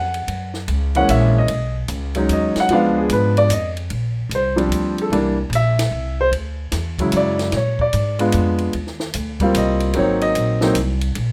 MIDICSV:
0, 0, Header, 1, 5, 480
1, 0, Start_track
1, 0, Tempo, 402685
1, 335, Time_signature, 3, 2, 24, 8
1, 13496, End_track
2, 0, Start_track
2, 0, Title_t, "Grand piano"
2, 0, Program_c, 0, 0
2, 0, Note_on_c, 0, 78, 80
2, 619, Note_off_c, 0, 78, 0
2, 1137, Note_on_c, 0, 52, 70
2, 1148, Note_on_c, 0, 56, 63
2, 1150, Note_on_c, 0, 58, 59
2, 1151, Note_on_c, 0, 78, 101
2, 1154, Note_on_c, 0, 61, 75
2, 1299, Note_off_c, 0, 78, 0
2, 1312, Note_on_c, 0, 76, 87
2, 1612, Note_off_c, 0, 76, 0
2, 1650, Note_on_c, 0, 75, 84
2, 1745, Note_off_c, 0, 52, 0
2, 1750, Note_off_c, 0, 56, 0
2, 1751, Note_off_c, 0, 58, 0
2, 1753, Note_off_c, 0, 61, 0
2, 2079, Note_off_c, 0, 75, 0
2, 2570, Note_on_c, 0, 54, 64
2, 2581, Note_on_c, 0, 61, 59
2, 2582, Note_on_c, 0, 56, 57
2, 2586, Note_on_c, 0, 63, 69
2, 2778, Note_on_c, 0, 75, 75
2, 3065, Note_off_c, 0, 75, 0
2, 3101, Note_on_c, 0, 78, 100
2, 3181, Note_off_c, 0, 54, 0
2, 3187, Note_off_c, 0, 56, 0
2, 3187, Note_off_c, 0, 61, 0
2, 3189, Note_off_c, 0, 63, 0
2, 3225, Note_on_c, 0, 53, 71
2, 3233, Note_on_c, 0, 56, 61
2, 3235, Note_off_c, 0, 78, 0
2, 3242, Note_on_c, 0, 59, 68
2, 3250, Note_on_c, 0, 62, 74
2, 3251, Note_on_c, 0, 77, 83
2, 3542, Note_off_c, 0, 77, 0
2, 3552, Note_on_c, 0, 68, 71
2, 3700, Note_off_c, 0, 68, 0
2, 3727, Note_on_c, 0, 71, 80
2, 4020, Note_off_c, 0, 71, 0
2, 4027, Note_on_c, 0, 74, 99
2, 4178, Note_off_c, 0, 74, 0
2, 4180, Note_off_c, 0, 53, 0
2, 4184, Note_off_c, 0, 56, 0
2, 4189, Note_off_c, 0, 59, 0
2, 4193, Note_off_c, 0, 62, 0
2, 4201, Note_on_c, 0, 75, 81
2, 4384, Note_off_c, 0, 75, 0
2, 5185, Note_on_c, 0, 72, 80
2, 5435, Note_on_c, 0, 55, 52
2, 5438, Note_on_c, 0, 53, 65
2, 5447, Note_on_c, 0, 60, 56
2, 5450, Note_on_c, 0, 62, 67
2, 5911, Note_off_c, 0, 72, 0
2, 5980, Note_on_c, 0, 69, 63
2, 6055, Note_off_c, 0, 55, 0
2, 6057, Note_off_c, 0, 53, 0
2, 6061, Note_off_c, 0, 60, 0
2, 6062, Note_off_c, 0, 62, 0
2, 6098, Note_on_c, 0, 52, 66
2, 6102, Note_on_c, 0, 55, 63
2, 6104, Note_on_c, 0, 58, 66
2, 6111, Note_on_c, 0, 62, 75
2, 6115, Note_off_c, 0, 69, 0
2, 6384, Note_off_c, 0, 52, 0
2, 6386, Note_off_c, 0, 55, 0
2, 6387, Note_off_c, 0, 58, 0
2, 6390, Note_off_c, 0, 62, 0
2, 6619, Note_on_c, 0, 76, 98
2, 7349, Note_off_c, 0, 76, 0
2, 7398, Note_on_c, 0, 72, 93
2, 7489, Note_off_c, 0, 72, 0
2, 8342, Note_on_c, 0, 54, 65
2, 8345, Note_on_c, 0, 56, 58
2, 8356, Note_on_c, 0, 49, 60
2, 8361, Note_on_c, 0, 64, 67
2, 8542, Note_on_c, 0, 74, 82
2, 8949, Note_off_c, 0, 54, 0
2, 8950, Note_off_c, 0, 56, 0
2, 8956, Note_off_c, 0, 49, 0
2, 8958, Note_off_c, 0, 64, 0
2, 8968, Note_off_c, 0, 74, 0
2, 9020, Note_on_c, 0, 73, 72
2, 9308, Note_off_c, 0, 73, 0
2, 9314, Note_on_c, 0, 74, 87
2, 9752, Note_off_c, 0, 74, 0
2, 9762, Note_on_c, 0, 56, 68
2, 9770, Note_on_c, 0, 59, 63
2, 9778, Note_on_c, 0, 62, 59
2, 9786, Note_on_c, 0, 65, 80
2, 10379, Note_off_c, 0, 56, 0
2, 10383, Note_off_c, 0, 59, 0
2, 10387, Note_off_c, 0, 62, 0
2, 10391, Note_off_c, 0, 65, 0
2, 11215, Note_on_c, 0, 55, 71
2, 11224, Note_on_c, 0, 58, 69
2, 11230, Note_on_c, 0, 60, 66
2, 11236, Note_on_c, 0, 65, 78
2, 11414, Note_on_c, 0, 75, 83
2, 11825, Note_off_c, 0, 55, 0
2, 11830, Note_off_c, 0, 58, 0
2, 11833, Note_off_c, 0, 60, 0
2, 11836, Note_off_c, 0, 65, 0
2, 11844, Note_off_c, 0, 75, 0
2, 11855, Note_on_c, 0, 54, 63
2, 11856, Note_on_c, 0, 58, 63
2, 11869, Note_on_c, 0, 60, 65
2, 11876, Note_on_c, 0, 63, 69
2, 11901, Note_on_c, 0, 73, 84
2, 12185, Note_on_c, 0, 75, 106
2, 12188, Note_off_c, 0, 73, 0
2, 12591, Note_off_c, 0, 54, 0
2, 12591, Note_off_c, 0, 58, 0
2, 12598, Note_off_c, 0, 60, 0
2, 12601, Note_off_c, 0, 63, 0
2, 12627, Note_off_c, 0, 75, 0
2, 12650, Note_on_c, 0, 54, 71
2, 12660, Note_on_c, 0, 58, 73
2, 12667, Note_on_c, 0, 60, 68
2, 12678, Note_on_c, 0, 63, 75
2, 12799, Note_off_c, 0, 54, 0
2, 12804, Note_off_c, 0, 58, 0
2, 12807, Note_off_c, 0, 60, 0
2, 12813, Note_off_c, 0, 63, 0
2, 13496, End_track
3, 0, Start_track
3, 0, Title_t, "Upright bass"
3, 0, Program_c, 1, 32
3, 0, Note_on_c, 1, 41, 89
3, 318, Note_off_c, 1, 41, 0
3, 329, Note_on_c, 1, 42, 76
3, 797, Note_off_c, 1, 42, 0
3, 808, Note_on_c, 1, 37, 94
3, 1277, Note_off_c, 1, 37, 0
3, 1295, Note_on_c, 1, 34, 93
3, 1753, Note_off_c, 1, 34, 0
3, 1760, Note_on_c, 1, 35, 84
3, 2233, Note_off_c, 1, 35, 0
3, 2247, Note_on_c, 1, 37, 99
3, 2716, Note_off_c, 1, 37, 0
3, 2727, Note_on_c, 1, 39, 87
3, 3026, Note_off_c, 1, 39, 0
3, 3203, Note_on_c, 1, 37, 79
3, 3675, Note_off_c, 1, 37, 0
3, 3689, Note_on_c, 1, 44, 98
3, 4152, Note_off_c, 1, 44, 0
3, 4159, Note_on_c, 1, 41, 92
3, 4633, Note_off_c, 1, 41, 0
3, 4654, Note_on_c, 1, 34, 78
3, 5111, Note_off_c, 1, 34, 0
3, 5118, Note_on_c, 1, 36, 84
3, 5584, Note_off_c, 1, 36, 0
3, 5591, Note_on_c, 1, 38, 81
3, 6070, Note_off_c, 1, 38, 0
3, 6081, Note_on_c, 1, 36, 78
3, 6546, Note_off_c, 1, 36, 0
3, 6553, Note_on_c, 1, 34, 99
3, 7031, Note_off_c, 1, 34, 0
3, 7047, Note_on_c, 1, 36, 84
3, 7518, Note_off_c, 1, 36, 0
3, 7527, Note_on_c, 1, 38, 80
3, 7999, Note_off_c, 1, 38, 0
3, 8011, Note_on_c, 1, 40, 100
3, 8480, Note_off_c, 1, 40, 0
3, 8494, Note_on_c, 1, 42, 95
3, 8962, Note_off_c, 1, 42, 0
3, 8967, Note_on_c, 1, 46, 82
3, 9438, Note_off_c, 1, 46, 0
3, 9456, Note_on_c, 1, 44, 97
3, 9923, Note_off_c, 1, 44, 0
3, 9936, Note_on_c, 1, 41, 91
3, 10403, Note_off_c, 1, 41, 0
3, 10422, Note_on_c, 1, 39, 79
3, 10886, Note_off_c, 1, 39, 0
3, 10901, Note_on_c, 1, 38, 99
3, 11365, Note_off_c, 1, 38, 0
3, 11382, Note_on_c, 1, 36, 98
3, 11846, Note_off_c, 1, 36, 0
3, 11869, Note_on_c, 1, 32, 80
3, 12329, Note_off_c, 1, 32, 0
3, 12349, Note_on_c, 1, 34, 89
3, 12809, Note_off_c, 1, 34, 0
3, 12817, Note_on_c, 1, 36, 94
3, 13283, Note_off_c, 1, 36, 0
3, 13302, Note_on_c, 1, 34, 86
3, 13496, Note_off_c, 1, 34, 0
3, 13496, End_track
4, 0, Start_track
4, 0, Title_t, "Muted upright bass strokes"
4, 3047, Note_on_c, 9, 29, 39
4, 3166, Note_off_c, 9, 29, 0
4, 13496, End_track
5, 0, Start_track
5, 0, Title_t, "Drums"
5, 167, Note_on_c, 9, 51, 45
5, 287, Note_off_c, 9, 51, 0
5, 333, Note_on_c, 9, 51, 60
5, 452, Note_off_c, 9, 51, 0
5, 642, Note_on_c, 9, 38, 33
5, 761, Note_off_c, 9, 38, 0
5, 809, Note_on_c, 9, 51, 58
5, 929, Note_off_c, 9, 51, 0
5, 1130, Note_on_c, 9, 51, 45
5, 1250, Note_off_c, 9, 51, 0
5, 1297, Note_on_c, 9, 44, 58
5, 1297, Note_on_c, 9, 51, 76
5, 1416, Note_off_c, 9, 44, 0
5, 1416, Note_off_c, 9, 51, 0
5, 1766, Note_on_c, 9, 51, 61
5, 1885, Note_off_c, 9, 51, 0
5, 2243, Note_on_c, 9, 44, 58
5, 2243, Note_on_c, 9, 51, 61
5, 2362, Note_off_c, 9, 44, 0
5, 2362, Note_off_c, 9, 51, 0
5, 2558, Note_on_c, 9, 51, 52
5, 2678, Note_off_c, 9, 51, 0
5, 2732, Note_on_c, 9, 44, 51
5, 2732, Note_on_c, 9, 51, 66
5, 2851, Note_off_c, 9, 44, 0
5, 2851, Note_off_c, 9, 51, 0
5, 3046, Note_on_c, 9, 38, 49
5, 3048, Note_on_c, 9, 51, 47
5, 3165, Note_off_c, 9, 38, 0
5, 3167, Note_off_c, 9, 51, 0
5, 3204, Note_on_c, 9, 51, 55
5, 3323, Note_off_c, 9, 51, 0
5, 3690, Note_on_c, 9, 44, 57
5, 3690, Note_on_c, 9, 51, 67
5, 3809, Note_off_c, 9, 44, 0
5, 3809, Note_off_c, 9, 51, 0
5, 4016, Note_on_c, 9, 51, 50
5, 4136, Note_off_c, 9, 51, 0
5, 4171, Note_on_c, 9, 44, 64
5, 4171, Note_on_c, 9, 51, 74
5, 4290, Note_off_c, 9, 44, 0
5, 4290, Note_off_c, 9, 51, 0
5, 4491, Note_on_c, 9, 51, 43
5, 4610, Note_off_c, 9, 51, 0
5, 4650, Note_on_c, 9, 51, 52
5, 4769, Note_off_c, 9, 51, 0
5, 5139, Note_on_c, 9, 44, 53
5, 5139, Note_on_c, 9, 51, 63
5, 5258, Note_off_c, 9, 44, 0
5, 5258, Note_off_c, 9, 51, 0
5, 5460, Note_on_c, 9, 51, 47
5, 5579, Note_off_c, 9, 51, 0
5, 5623, Note_on_c, 9, 44, 58
5, 5623, Note_on_c, 9, 51, 66
5, 5742, Note_off_c, 9, 44, 0
5, 5742, Note_off_c, 9, 51, 0
5, 5938, Note_on_c, 9, 51, 41
5, 6058, Note_off_c, 9, 51, 0
5, 6110, Note_on_c, 9, 51, 55
5, 6230, Note_off_c, 9, 51, 0
5, 6588, Note_on_c, 9, 44, 55
5, 6588, Note_on_c, 9, 51, 65
5, 6707, Note_off_c, 9, 44, 0
5, 6707, Note_off_c, 9, 51, 0
5, 6900, Note_on_c, 9, 38, 49
5, 6903, Note_on_c, 9, 51, 70
5, 7019, Note_off_c, 9, 38, 0
5, 7022, Note_off_c, 9, 51, 0
5, 7541, Note_on_c, 9, 51, 55
5, 7660, Note_off_c, 9, 51, 0
5, 8006, Note_on_c, 9, 38, 38
5, 8008, Note_on_c, 9, 44, 54
5, 8008, Note_on_c, 9, 51, 68
5, 8125, Note_off_c, 9, 38, 0
5, 8127, Note_off_c, 9, 44, 0
5, 8127, Note_off_c, 9, 51, 0
5, 8326, Note_on_c, 9, 36, 58
5, 8332, Note_on_c, 9, 51, 52
5, 8446, Note_off_c, 9, 36, 0
5, 8451, Note_off_c, 9, 51, 0
5, 8486, Note_on_c, 9, 44, 66
5, 8486, Note_on_c, 9, 51, 71
5, 8605, Note_off_c, 9, 44, 0
5, 8605, Note_off_c, 9, 51, 0
5, 8808, Note_on_c, 9, 38, 47
5, 8811, Note_on_c, 9, 51, 45
5, 8928, Note_off_c, 9, 38, 0
5, 8930, Note_off_c, 9, 51, 0
5, 8963, Note_on_c, 9, 38, 38
5, 8965, Note_on_c, 9, 51, 55
5, 9082, Note_off_c, 9, 38, 0
5, 9084, Note_off_c, 9, 51, 0
5, 9286, Note_on_c, 9, 36, 58
5, 9405, Note_off_c, 9, 36, 0
5, 9450, Note_on_c, 9, 44, 53
5, 9450, Note_on_c, 9, 51, 69
5, 9569, Note_off_c, 9, 44, 0
5, 9569, Note_off_c, 9, 51, 0
5, 9765, Note_on_c, 9, 51, 52
5, 9884, Note_off_c, 9, 51, 0
5, 9920, Note_on_c, 9, 44, 61
5, 9920, Note_on_c, 9, 51, 69
5, 10039, Note_off_c, 9, 44, 0
5, 10039, Note_off_c, 9, 51, 0
5, 10233, Note_on_c, 9, 51, 47
5, 10352, Note_off_c, 9, 51, 0
5, 10407, Note_on_c, 9, 51, 54
5, 10526, Note_off_c, 9, 51, 0
5, 10571, Note_on_c, 9, 38, 28
5, 10691, Note_off_c, 9, 38, 0
5, 10726, Note_on_c, 9, 38, 49
5, 10845, Note_off_c, 9, 38, 0
5, 10890, Note_on_c, 9, 44, 65
5, 10890, Note_on_c, 9, 51, 71
5, 11009, Note_off_c, 9, 44, 0
5, 11009, Note_off_c, 9, 51, 0
5, 11204, Note_on_c, 9, 51, 47
5, 11205, Note_on_c, 9, 36, 59
5, 11323, Note_off_c, 9, 51, 0
5, 11324, Note_off_c, 9, 36, 0
5, 11378, Note_on_c, 9, 44, 64
5, 11378, Note_on_c, 9, 51, 73
5, 11497, Note_off_c, 9, 44, 0
5, 11497, Note_off_c, 9, 51, 0
5, 11685, Note_on_c, 9, 51, 47
5, 11805, Note_off_c, 9, 51, 0
5, 11842, Note_on_c, 9, 51, 58
5, 11961, Note_off_c, 9, 51, 0
5, 12176, Note_on_c, 9, 51, 50
5, 12295, Note_off_c, 9, 51, 0
5, 12338, Note_on_c, 9, 44, 54
5, 12338, Note_on_c, 9, 51, 62
5, 12457, Note_off_c, 9, 44, 0
5, 12457, Note_off_c, 9, 51, 0
5, 12647, Note_on_c, 9, 38, 62
5, 12766, Note_off_c, 9, 38, 0
5, 12813, Note_on_c, 9, 44, 52
5, 12813, Note_on_c, 9, 51, 77
5, 12932, Note_off_c, 9, 44, 0
5, 12932, Note_off_c, 9, 51, 0
5, 13127, Note_on_c, 9, 51, 50
5, 13246, Note_off_c, 9, 51, 0
5, 13293, Note_on_c, 9, 51, 62
5, 13412, Note_off_c, 9, 51, 0
5, 13496, End_track
0, 0, End_of_file